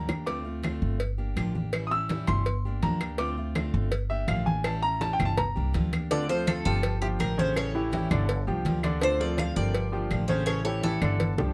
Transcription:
Already playing: D2 A#5
0.08 A#3 D4 G4, cowbell, low bongo, high conga, claves
0.26 D3 A3 C4 F4 D6, cowbell, high conga
0.44 A3 C4 F4, high conga
0.63 D3 A3 C4 F4, cowbell, high conga, claves
0.82 G1, high conga
1.00 muted steel-string acoustic guitar stroke, cowbell, high conga
1.18 A#3 D4 G4, high conga
1.36 A1 D3 F3 A#3 D4 G4, cowbell, high conga, claves
1.54 A#3 D4 G4, high conga
1.72 E3 G3 C#4 E4, cowbell, high conga, claves
1.87 E4 D#6
1.91 G3 C#4 E6, high conga
2.09 E3 G3 C#4 E4, cowbell, high conga
2.27 G1 C6, cowbell, high conga, low conga, claves
2.46 muted steel-string acoustic guitar stroke, cowbell, high conga
2.65 A#3 D4 G4, high conga
2.82 D2 D3 F3 A#3 D4 G4 A#5, cowbell, high conga
3.01 A#3 D4 G4, cowbell, claves
3.18 D3 A3 C4 F4 D6, cowbell, high conga
3.37 A3 C4 F4, high conga
3.55 D3 A3 C4 F4, cowbell, high conga, claves
3.74 G1, high conga
3.92 muted steel-string acoustic guitar stroke, cowbell, high conga
4.10 A#3 D4 G4 E5, high conga
4.28 A1 D3 F3 A#3 D4 G4 F5, cowbell, high conga, claves
4.46 A#3 D4 G4 G#5, high conga
4.64 E3 G3 C#4 E4 A5, cowbell, claves
4.82 G3 C#4 E4 A#5, high conga
5.01 E3 G3 C#4 E4 A5, cowbell, high conga
5.13 G5
5.19 G1, cowbell, high conga, low conga, claves
5.25 A5
5.38 A#5, muted steel-string acoustic guitar stroke, cowbell, high conga, low conga
5.56 C2 A#3 D4 G4, high conga
5.73 D2 D3 F3 A#3 D4 G4, cowbell, high conga
5.92 A#3 D4 G4, cowbell, high conga, claves
6.11 D3 A3 C4 D4 F4 A4 D5, cowbell
6.28 F3 A3 C4 F4 A4 C5, high conga
6.47 D3 A3 C4 F4 A4, cowbell, high conga, claves
6.65 G1 F3 F4 G4 A4
6.83 muted steel-string acoustic guitar stroke, cowbell, high conga
7.01 F3 A#3 D4 E4 F4 G4, high conga
7.19 A1 D3 F3 A#3 D4 G4 A#4, cowbell, high conga, claves
7.38 C#3 A#3 C#4 D4 G4 A4 C5 C#5, high conga
7.55 E3 G3 C#4 E4 A4 C#5, cowbell, high conga, claves
7.74 E3 G3 C#4 E4 G4, high conga
7.92 E3 G3 C#4 E4 G4, cowbell, high conga
8.11 G1 D3 D5, cowbell, high conga, low conga, claves
8.29 muted steel-string acoustic guitar stroke, cowbell, high conga
8.47 C2 F3 A#3 D4 F4 G4, high conga
8.65 D2 D3 F3 A#3 D4 G4, cowbell, high conga
8.83 D3 A#3 D4 G4 D5, cowbell, high conga, claves
9.01 D3 A3 C4 D4 F4 A4 C5 D5, cowbell, high conga
9.20 F3 A3 C4 F4 A4 A#4 D5, high conga
9.37 D3 A3 C4 F4 D5 F5, cowbell, high conga, claves
9.56 G1 F3 F4 G4 A#4 D5, high conga
9.75 muted steel-string acoustic guitar stroke, cowbell, high conga
9.92 F3 A#3 D4 F4 G4, high conga
10.11 A1 D3 F3 A#3 D4 G4, cowbell, claves
10.28 C#3 A#3 C#4 D4 G4 A4 C5 C#5, high conga
10.46 E3 G3 C#4 E4 A4 C#5, cowbell, claves
10.64 E3 G3 C#4 E4 G4 A4 C#5, high conga
10.81 E3 G3 C#4 E4 G4 A4, cowbell, high conga
11.02 G1 D3 D5, cowbell, high conga, claves
11.20 muted steel-string acoustic guitar stroke, cowbell, high conga
11.38 C2 F3 A#3 D4 G4, high bongo, low conga

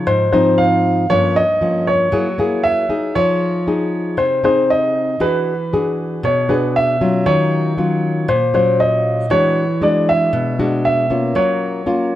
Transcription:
Already playing: F3 D#4
0.07 G#2 C5
0.33 F3 C4 D#4 C5
0.58 F5
1.10 G2 F3 A#3 C#4 C#5
1.36 D#5
1.61 F3 A#3 C#4
1.87 C#5
2.12 F#3 A#3 E4 G#4
2.38 A#3 E4 G#4
2.64 E5
2.89 D#4 G#4
3.15 F3 C#5
3.67 D#4 G#4
4.17 C3 C5
4.44 C4 D#4 G#4 C5
4.70 D#5
5.20 E3 D4 F#4 G#4 B4
5.73 D4 F#4 G#4
6.23 B2 C#5
6.49 D4 F#4 G#4 B4
6.76 E5
7.01 F#3 C#4 F4
7.26 D#3 C#5
7.78 F#3 C#4 F4
8.28 A#2 C5
8.54 F#3 C#4 F4 C5
8.80 D#5
9.30 E3 G#3 D4 F#4 C#5
9.81 G#3 D4 F#4 D5
10.09 E5
10.33 B2
10.59 G#3 D4 F#4
10.85 E5
11.10 A#3 C#4 F4
11.35 F#3 C#5
11.86 A#3 C#4 F4

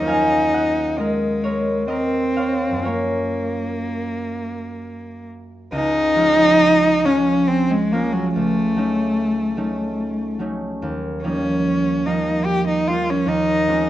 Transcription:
Already playing: D#2 F#3 G#3 D#4 C5 C#5 D#5 F#5
0.00 A#3 C#4
0.05 F4 F5 G#5
0.54 D#5 F#5
0.98 G#3 A#4 D#5
1.44 A#4 C#5
1.88 C4 A#4 D#5
2.36 C#5 F5
2.70 F#2 F#3
2.76 A#3 C#4
2.83 F4 A#4 C#5
2.87 A#3
5.72 C#2 D#4
6.16 F3 G#3 C#4 F4
7.04 F3 G#3 C#4 F4
7.48 C4
7.71 G#3
7.92 F3 G#3 A#3 C#4 F4
8.13 F#3
8.35 C#2 A3
8.76 F#3 A3 C#4 D#4
9.56 F#3 A3 C#4 D#4
10.39 F#3 A3 C#4 D#4
10.82 D#2
11.24 F3 G3 A#3 C#4 D#4
12.06 F3 G3 A#3 D#4
12.45 G4
12.68 D#4
12.87 F3 G3 A#3 D#4 F4
13.10 C#4
13.26 D#2 D#4
13.67 F3 G#3 C4 C#4

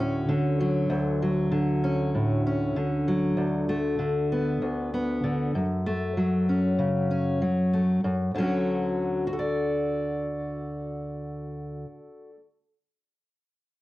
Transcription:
Already playing: D2 A2 D3 F#3 F#4
0.00 C#4
0.28 D3
0.60 F#3
0.90 D2
1.22 F#3
1.52 D3
1.84 C#4
2.15 A2
2.46 C#4
2.76 D3
3.08 F#3
3.37 D2
3.69 A3
3.99 D3
4.32 B3
4.62 D2
4.94 B3
5.24 D3
5.55 F#2
5.86 A3
6.17 F#3
6.49 C#4
6.79 C#3
7.11 C#4
7.42 F#3
7.73 A3
8.04 F#2
8.34 D2 D3 F#3
8.40 C#4 F#4
9.27 F#4
9.33 A4
9.39 D5

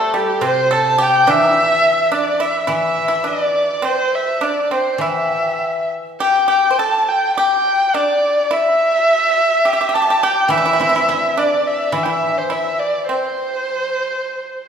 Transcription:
Already playing: G3 A3 A4
0.08 A4
0.14 G3 G4
0.41 C3 C4 C5
0.45 C5
0.71 A4 A5
0.98 G4 G5
1.03 G5
1.27 E3 D4 E5
1.51 E4
2.06 E5
2.12 D4 D5
2.40 E4 E5
2.67 E3 E4 E5
2.72 E5
3.08 E4
3.24 D4 D5
3.82 C4 B4 C5
3.97 C5
4.15 E5
4.41 D4 D5
4.71 C4 C5
4.98 E3 E4 E5
5.10 G5
5.17 E5
5.25 G5
5.32 E5
5.42 G5
5.49 E5
5.59 G5
5.66 E5
6.20 G4 G5
6.48 G4 G5
6.71 C5
6.78 A4 A5
7.08 G5
7.36 G4 G5
7.94 D4 D5
8.36 D5
8.51 E4 E5
9.65 G4
9.73 G4
9.81 G4
9.89 G4
9.94 G4 A5
10.02 G4
10.10 G4
10.23 G4 G5
10.48 E3 E4 E5
10.58 E4
10.66 E4
10.73 E4
10.80 C4 E4
10.89 E4
10.96 E4
11.09 E4
11.32 E5
11.37 D4 D5
11.67 E5
11.92 E3 E4 E5
12.03 E4 G5
12.08 E5
12.32 D4
12.37 C5
12.50 E4 E5
12.79 D5
13.08 C4 C5

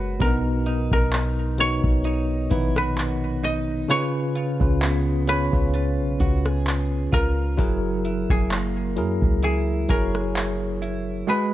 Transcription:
Already playing: F#1 G#3 B3 F#4 B4 C5 C#5
0.20 B1 B2 B3 D4 A#4, kick, closed hi-hat
0.27 D#4
0.66 D#4, closed hi-hat
0.91 B1 A#4, kick
1.12 clap, closed hi-hat
1.58 B2 B3 D#4 C#5, closed hi-hat
1.84 B1, kick
2.04 D#4, closed hi-hat
2.50 A#1 D#3 B3 D#4 E4 B4, kick, closed hi-hat
2.76 F#4 B4, cross-stick
2.97 clap, closed hi-hat
3.43 D#4 D#5, closed hi-hat
3.88 C#3 C#4 F4 B4 C#5, closed hi-hat
4.35 F4, closed hi-hat
4.59 C#2 C#3 C#4 F4 B4, kick
4.81 B3, clap, closed hi-hat
5.27 C#3 C#4 F4 B4 C#5, closed hi-hat
5.52 C#2 C#3 C#4 F4 B4, kick
5.74 F4, closed hi-hat
5.99 B1
6.20 C#2 F#4, kick, closed hi-hat
6.45 G#4, cross-stick
6.66 clap, closed hi-hat
7.12 C#2 F4 A#4, kick, closed hi-hat
7.57 F#1 F#3 E4 G#4 A#4, kick, closed hi-hat
8.05 E4, closed hi-hat
8.30 F#1 G#4, kick
8.50 A#3, clap, closed hi-hat
8.96 F#2 F#3 E4 G#4 A#4, closed hi-hat
9.22 C#2, kick
9.43 E4 G#4, closed hi-hat
9.89 F#1 F#3 E4 G#4 A#4 C#5, kick, closed hi-hat
10.15 cross-stick
10.36 clap, closed hi-hat
10.82 E4, closed hi-hat
11.27 G#3 F#4 G#4 B4

